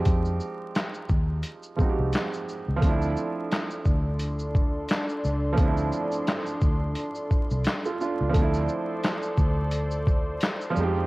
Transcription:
0.00 1.72 F3 medium
0.00 1.73 G#3 medium
0.00 1.75 C4 medium
0.00 1.77 D#4 medium
0.00 1.78 G4 medium
0.05 0.38 F2 medium
0.05 kick loud
0.05 closed hi-hat medium
0.05 shaker medium
0.25 shaker soft
0.40 shaker soft
0.75 snare loud
0.75 clap medium
0.75 closed hi-hat medium
0.75 shaker medium
0.94 shaker soft
1.09 1.42 D#2 medium
1.09 kick medium
1.09 shaker soft
1.43 closed hi-hat medium
1.43 shaker medium
1.63 shaker soft
1.77 2.75 F3 medium
1.77 2.82 G#3 medium
1.77 2.81 C4 medium
1.77 kick medium
1.77 shaker soft
1.81 2.83 D#4 medium
1.81 1.88 F#4 medium
1.89 2.87 G4 medium
1.99 2.12 C2 medium
2.13 snare loud
2.13 clap medium
2.13 closed hi-hat medium
2.13 shaker medium
2.33 shaker medium
2.49 shaker soft
2.68 2.82 C#2 medium
2.76 5.51 F3 medium
2.76 5.53 A3 medium
2.82 3.14 D2 medium
2.82 5.54 C4 medium
2.82 8.29 D4 medium
2.82 8.29 A4 medium
2.82 8.29 D5 medium
2.82 8.30 C6 medium
2.82 kick loud
2.82 closed hi-hat medium
2.82 shaker medium
2.86 5.56 D4 medium
2.86 5.57 E4 medium
3.02 shaker soft
3.16 shaker soft
3.52 snare medium
3.52 clap medium
3.52 closed hi-hat medium
3.52 shaker medium
3.70 shaker soft
3.85 4.85 D2 medium
3.85 kick medium
3.85 shaker soft
4.19 closed hi-hat medium
4.19 shaker medium
4.39 shaker soft
4.55 kick loud
4.55 shaker soft
4.89 snare loud
4.89 clap medium
4.89 closed hi-hat medium
4.89 shaker medium
5.09 shaker soft
5.24 5.56 C#2 medium
5.24 shaker soft
5.53 7.58 F3 medium
5.53 7.60 A3 medium
5.58 5.90 D2 medium
5.58 7.61 C4 medium
5.58 kick loud
5.58 closed hi-hat medium
5.58 shaker medium
5.62 7.63 D4 medium
5.62 7.64 E4 medium
5.77 shaker soft
5.92 shaker soft
6.12 shaker soft
6.27 snare loud
6.27 clap medium
6.27 closed hi-hat medium
6.27 shaker medium
6.46 shaker soft
6.61 6.94 D2 medium
6.61 kick medium
6.61 shaker soft
6.95 closed hi-hat medium
6.95 shaker medium
7.15 shaker soft
7.31 kick medium
7.31 shaker soft
7.50 7.64 C2 medium
7.50 shaker soft
7.64 snare loud
7.64 clap medium
7.64 closed hi-hat medium
7.64 shaker medium
7.85 7.99 F4 medium
7.85 7.99 A4 medium
7.85 shaker soft
8.00 8.19 D4 medium
8.00 8.18 F4 medium
8.00 shaker soft
8.20 8.34 C#2 medium
8.20 8.37 D4 medium
8.29 10.69 F3 medium
8.29 10.70 A3 medium
8.34 8.66 D2 loud
8.34 10.72 C4 medium
8.34 10.73 A4 medium
8.34 11.07 C5 medium
8.34 10.73 D5 medium
8.34 11.07 C6 medium
8.34 kick loud
8.34 closed hi-hat medium
8.34 shaker medium
8.38 10.73 D4 medium
8.38 10.75 E4 medium
8.54 shaker soft
8.68 shaker soft
9.04 snare loud
9.04 clap medium
9.04 closed hi-hat medium
9.04 shaker medium
9.22 shaker soft
9.38 10.37 D2 loud
9.38 kick medium
9.38 shaker medium
9.71 closed hi-hat medium
9.71 shaker medium
9.91 shaker soft
10.07 kick loud
10.07 shaker soft
10.41 snare loud
10.41 clap medium
10.41 closed hi-hat medium
10.41 shaker medium
10.61 shaker soft
10.70 11.07 F3 medium
10.70 10.82 G3 medium
10.76 11.07 F2 loud
10.76 11.07 G#3 medium
10.76 11.07 C4 medium
10.76 11.07 D#5 medium
10.76 shaker soft
10.80 11.07 G#3 medium
10.80 11.07 D#4 medium
10.80 11.07 G4 medium

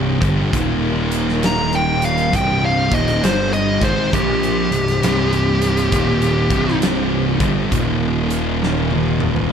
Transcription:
0.00 0.18 C1 loud
0.00 0.19 C2 medium
0.00 0.19 G2 loud
0.00 0.20 C3 loud
0.00 0.49 C4 medium
0.00 0.49 G4 medium
0.00 0.49 C5 medium
0.20 0.51 G1 medium
0.20 0.51 G2 medium
0.20 0.52 D3 medium
0.20 0.52 G3 loud
0.20 kick loud
0.20 closed hi-hat medium
0.51 2.29 D#1 medium
0.51 2.31 D#2 medium
0.51 2.32 A#2 loud
0.51 2.32 D#3 loud
0.51 2.32 D#4 medium
0.51 2.32 A#4 medium
0.51 2.32 F5 medium
0.51 kick loud
0.51 closed hi-hat loud
1.12 closed hi-hat medium
1.28 snare soft
1.43 1.74 A#5 medium
1.43 snare loud
1.43 closed hi-hat medium
1.73 2.03 G5 medium
1.73 closed hi-hat soft
2.02 2.33 F5 medium
2.02 snare soft
2.02 closed hi-hat medium
2.18 closed hi-hat soft
2.32 2.88 C1 medium
2.32 2.89 C2 medium
2.32 2.89 G2 medium
2.32 2.90 C3 loud
2.32 7.68 C4 medium
2.32 5.89 G4 medium
2.32 7.68 C5 medium
2.32 kick loud
2.32 closed hi-hat loud
2.36 2.64 G5 medium
2.65 2.93 F5 medium
2.90 3.21 D#1 loud
2.90 3.22 D#2 loud
2.90 3.22 A#2 loud
2.90 3.22 D#3 loud
2.90 3.23 D#5 medium
2.90 kick loud
2.90 closed hi-hat medium
3.08 snare soft
3.08 closed hi-hat soft
3.23 3.77 G1 medium
3.23 3.79 G2 loud
3.23 3.79 D3 loud
3.23 3.80 G3 loud
3.23 3.53 C5 medium
3.23 snare loud
3.23 closed hi-hat loud
3.53 3.82 D#5 medium
3.53 closed hi-hat soft
3.80 4.11 G#1 medium
3.80 4.11 G#2 medium
3.80 4.12 D#3 medium
3.80 4.12 G#3 loud
3.80 4.13 C5 medium
3.80 kick loud
3.80 closed hi-hat medium
4.12 4.67 A#1 loud
4.12 4.69 A#2 medium
4.12 4.69 F3 loud
4.12 4.69 A#3 loud
4.12 6.78 G4 medium
4.12 kick loud
4.12 closed hi-hat loud
4.43 closed hi-hat soft
4.71 5.00 C1 medium
4.71 4.96 C2 medium
4.71 4.96 G2 medium
4.71 closed hi-hat medium
4.88 snare soft
4.88 closed hi-hat soft
5.02 5.88 C1 medium
5.02 5.91 C2 loud
5.02 5.92 G2 medium
5.02 5.92 C3 loud
5.02 snare loud
5.02 closed hi-hat loud
5.33 closed hi-hat soft
5.62 snare soft
5.62 closed hi-hat medium
5.77 closed hi-hat medium
5.91 6.47 D#1 loud
5.91 6.49 D#2 medium
5.91 6.49 A#2 loud
5.91 6.49 D#3 loud
5.91 7.70 F4 medium
5.91 kick loud
5.91 closed hi-hat loud
6.22 closed hi-hat soft
6.50 7.36 C1 medium
6.50 7.39 C2 medium
6.50 7.39 G2 medium
6.50 7.39 C3 loud
6.50 kick loud
6.50 closed hi-hat medium
6.68 snare soft
6.82 snare loud
6.82 closed hi-hat loud
7.40 7.70 G1 medium
7.40 7.71 G2 medium
7.40 7.71 D3 loud
7.40 7.71 G3 loud
7.40 kick loud
7.40 closed hi-hat medium
7.71 9.47 D#1 loud
7.71 9.50 D#2 medium
7.71 9.51 A#2 loud
7.71 9.51 D#3 loud
7.71 9.50 D#4 medium
7.71 9.50 A#4 medium
7.71 9.50 F5 medium
7.71 kick loud
7.71 closed hi-hat loud
8.30 closed hi-hat medium
8.63 snare medium
8.91 high tom medium
9.20 mid tom medium
9.36 floor tom medium

